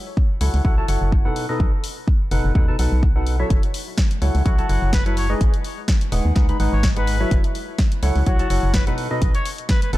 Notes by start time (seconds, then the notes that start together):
0.17 kick
0.41 C#2 F#3 E4 A4 C#5 F#5, open hi-hat
0.54 C#2, open hi-hat
0.65 B1 F#3 E4 A4 C#5 F#5, kick
0.78 F#3 E4 A4 C#5 A5
0.88 F#1 F#3 E4 A4 C#5 F#5, open hi-hat
1.01 F#1
1.12 kick
1.25 B2 D#4 A4 B4 F#5
1.36 open hi-hat
1.49 B2 D#4 A4 B4 D#5
1.60 B1, kick
1.84 open hi-hat
2.08 kick
2.31 F#1 B2 D#4 A4 B4 F#5, open hi-hat
2.44 F#1
2.55 D#2 B2 D#4 A4 B4 F#5, kick
2.68 B2 D#4 A4 B4 A5
2.79 B1 B2 D#4 A4 B4 F#5, open hi-hat
2.92 B1
3.03 kick
3.16 B2 D#4 A4 B4 F#5
3.27 open hi-hat
3.40 F#3 E4 A4 C#5 E5
3.50 F#1, kick, closed hi-hat
3.63 closed hi-hat
3.74 open hi-hat
3.98 kick, snare, closed hi-hat
4.11 closed hi-hat
4.22 C#2 F#3 E4 A4 C#5 F#5, open hi-hat
4.35 C#2, open hi-hat
4.46 B1 F#3 E4 F#4 A4 C#5 F#5, kick, closed hi-hat
4.58 F#3 E4 A4 C#5 A5, closed hi-hat
4.69 F#1 F#3 E4 A4 C#5 F#5, open hi-hat
4.82 F#1
4.93 B4, kick, snare, closed hi-hat
5.06 F#3 E4 A4 B4 C#5 F#5, closed hi-hat
5.17 C#5, open hi-hat
5.30 G#3 D#4 G#4 B4 D#5
5.41 G#1, kick, closed hi-hat
5.54 closed hi-hat
5.65 open hi-hat
5.88 kick, snare, closed hi-hat
6.01 closed hi-hat
6.12 D#1 G#3 D#4 G#4 B4 F#5, open hi-hat
6.25 D#2
6.36 C#2 G#3 D#4 G#4 B4 F#5, kick, snare, closed hi-hat
6.49 G#3 D#4 G#4 B4 B5, closed hi-hat
6.60 G#1 G#3 D#4 G#4 B4 F#5, open hi-hat
6.73 G#1 C#5
6.83 kick, snare, closed hi-hat
6.96 G#3 D#4 G#4 B4 F#5, closed hi-hat
7.07 open hi-hat
7.20 F#3 E4 A4 C#5 E5
7.31 F#1, kick, closed hi-hat
7.44 closed hi-hat
7.55 open hi-hat
7.78 kick, snare, closed hi-hat
7.92 closed hi-hat
8.03 C#2 F#3 E4 A4 C#5 F#5, open hi-hat
8.16 C#2, open hi-hat
8.26 B1 F#3 E4 F#4 A4 C#5 F#5, kick, closed hi-hat
8.39 F#3 E4 A4 C#5 A5, closed hi-hat
8.50 F#1 F#3 E4 A4 C#5 F#5, open hi-hat
8.63 F#1
8.74 B4, kick, snare, closed hi-hat
8.87 B2 D#4 A4 B4 F#5, closed hi-hat
8.98 open hi-hat
9.11 B2 D#4 A4 B4 D#5
9.22 B1, kick, closed hi-hat
9.35 C#5, closed hi-hat
9.46 open hi-hat
9.58 closed hi-hat
9.69 B4, kick, snare, closed hi-hat
9.82 B4, closed hi-hat
9.93 F#1 B2 D#4 A4 B4 F#5, open hi-hat